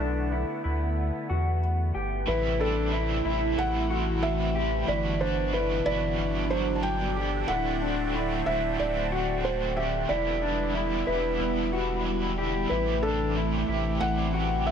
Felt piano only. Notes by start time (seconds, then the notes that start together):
Already playing: A4
2.28 B4
2.61 A4
3.58 F#5
4.23 E5
4.88 D5
5.21 C5
5.54 B4
5.86 D5
6.50 C5
6.75 A5
6.83 G5
7.48 F#5
8.46 E5
8.80 D5
9.45 C5
9.77 E5
10.09 D5
11.07 B4
12.69 B4
13.03 A4
14.00 F#5
14.67 E5